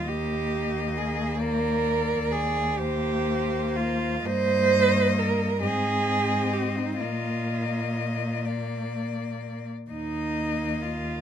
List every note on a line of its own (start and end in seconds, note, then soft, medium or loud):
0.00 4.21 D#2 medium
0.07 2.78 A#3 medium
0.07 0.99 G4 medium
0.07 1.40 D#5 medium
0.98 1.42 G#4 medium
1.43 2.34 A#4 medium
1.43 2.80 D5 medium
2.32 2.80 G#4 medium
2.79 4.22 A#3 medium
2.79 3.77 G4 medium
2.79 4.25 C5 medium
3.76 4.27 F4 medium
4.26 5.63 G2 medium
4.26 5.58 A#3 medium
4.26 5.20 C5 loud
4.26 5.58 D#5 medium
5.19 5.62 A#4 medium
5.61 7.01 G#2 medium
5.61 7.02 C4 medium
5.61 6.54 G#4 loud
5.61 6.97 D#5 medium
6.53 6.79 G4 medium
6.77 6.99 D#4 medium
6.99 9.69 A#2 medium
6.99 8.44 A#3 medium
6.99 8.41 F4 medium
6.99 8.47 D#5 medium
8.45 9.67 A#3 soft
8.45 9.70 D5 soft
9.90 11.21 D#2 soft
9.90 11.21 A#3 medium
9.90 10.83 D#4 medium
9.90 11.21 D#5 medium
10.82 11.21 F4 medium